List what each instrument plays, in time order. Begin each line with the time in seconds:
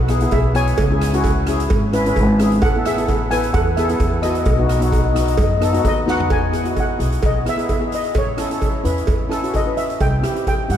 Already playing: upright bass B1
0.08 steel pan B3 E4 G#4, cross-stick, closed hi-hat
0.21 steel pan B3 E4 G#4, closed hi-hat
0.31 upright bass B1, steel pan G#4 E5, kick, closed hi-hat, cowbell
0.54 steel pan B3 E4 G#4 C#5 G#5, cross-stick, closed hi-hat
0.67 closed hi-hat
0.78 upright bass C#2, kick, closed hi-hat, cowbell
0.90 steel pan C#4 E4 G#4
1.01 cross-stick, closed hi-hat
1.13 steel pan C#4 E4 F#4, closed hi-hat
1.24 kick, closed hi-hat, cowbell
1.47 steel pan C#4 E4 G#4, cross-stick, closed hi-hat
1.60 closed hi-hat
1.70 upright bass G#1, kick, closed hi-hat, cowbell
1.92 steel pan C#4 E4 B4, cross-stick, closed hi-hat
2.05 steel pan C#4 E4 B4, closed hi-hat
2.16 upright bass G#1, kick, closed hi-hat, cowbell
2.38 steel pan C#4 E4 G#4, cross-stick, closed hi-hat
2.52 closed hi-hat
2.62 upright bass A1, steel pan A4 F#5, kick, closed hi-hat, cowbell
2.75 steel pan B3 E4 A4
2.86 steel pan G#4 E5, cross-stick, closed hi-hat
2.97 steel pan B3 E4 A4, closed hi-hat
3.08 kick, closed hi-hat, cowbell
3.30 steel pan B3 E4 A4 B4 G#5, cross-stick, closed hi-hat
3.43 closed hi-hat
3.54 upright bass E2, steel pan A4 F#5, kick, closed hi-hat, cowbell
3.77 steel pan B3 E4 G#4 A4 E5, cross-stick, closed hi-hat
3.89 steel pan B3 E4 A4, closed hi-hat
4.00 upright bass E2, kick, closed hi-hat, cowbell
4.22 steel pan B3 E4 F#4 A4 D#5, cross-stick, closed hi-hat
4.30 steel pan D#5
4.35 steel pan D#5, closed hi-hat
4.44 upright bass B1, steel pan D#5, kick, closed hi-hat, cowbell
4.53 steel pan D#5
4.58 steel pan B3 D#4 F#4 D#5
4.67 steel pan D#5, cross-stick, closed hi-hat
4.75 steel pan D#5
4.80 steel pan B3 D#4 F#4 D#5, closed hi-hat
4.90 steel pan D#5, kick, closed hi-hat, cowbell
4.98 steel pan D#5
5.05 steel pan D#5
5.12 steel pan B3 D#4 F#4 D#5, cross-stick, closed hi-hat
5.21 steel pan D#5
5.28 steel pan D#5, closed hi-hat
5.35 steel pan D#5, kick, closed hi-hat, cowbell
5.39 upright bass F#2
5.43 steel pan D#5
5.50 steel pan D#5
5.57 steel pan B3 D#4 D#5
5.62 steel pan A4 D#5, cross-stick, closed hi-hat
5.73 steel pan B3 D#4 F#4 D#5, closed hi-hat
5.80 steel pan D#5
5.85 upright bass D#2, steel pan D#5, kick, closed hi-hat, cowbell
6.06 steel pan B3 D#4 F#4 F#5, snare
6.20 floor tom
6.30 upright bass E2, steel pan G#5, kick, closed hi-hat, cowbell
6.51 steel pan B3 E4 G#4, cross-stick, closed hi-hat
6.64 steel pan B3 E4 F#4, closed hi-hat
6.76 steel pan F#5, kick, closed hi-hat, cowbell
6.98 upright bass B1, steel pan B3 E4 G#4, closed hi-hat
7.12 closed hi-hat
7.23 upright bass B1, steel pan D#5, kick, closed hi-hat, cowbell
7.45 steel pan B3 E4 G#4, cross-stick, closed hi-hat
7.49 steel pan E5
7.57 steel pan B3 E4 G#4, closed hi-hat
7.69 kick, closed hi-hat, cowbell
7.79 steel pan B3 E4 G#4
7.92 steel pan D#5, closed hi-hat
8.04 closed hi-hat
8.14 upright bass A1, steel pan C#5, kick, closed hi-hat, cowbell
8.37 steel pan C#4 E4 A4, cross-stick, closed hi-hat
8.50 steel pan C#4 E4 A4, closed hi-hat
8.61 kick, closed hi-hat, cowbell
8.84 upright bass E2, steel pan C#4 E4 B4, closed hi-hat
8.98 closed hi-hat
9.07 upright bass E2, kick, closed hi-hat, cowbell
9.29 steel pan C#4 E4 A4, cross-stick, closed hi-hat
9.42 steel pan C#4 E4 F#4, closed hi-hat
9.54 steel pan D#5, kick, closed hi-hat, cowbell
9.65 steel pan C#4 E4 B4
9.77 steel pan E5, closed hi-hat
9.90 closed hi-hat
10.00 upright bass C2, steel pan G5, kick, closed hi-hat, cowbell
10.22 steel pan C4 E4 G4, cross-stick, closed hi-hat
10.34 steel pan C4 E4 G4, closed hi-hat
10.47 steel pan G5, kick, closed hi-hat, cowbell
10.68 upright bass G2, steel pan C4 E4 G4 F#5, closed hi-hat